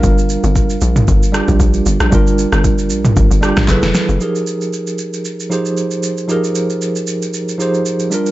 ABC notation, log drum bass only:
X:1
M:4/4
L:1/16
Q:"Swing 16ths" 1/4=115
K:Fdor
V:1 name="Log drum bass" clef=bass
G,,,3 G,,,3 B,,,2 G,,,3 B,,, B,,,2 G,,, B,,, | G,,,3 G,,,3 B,,,2 G,,, G,,,2 B,,, _G,,, F,,, z G,,, | z16 | z16 |]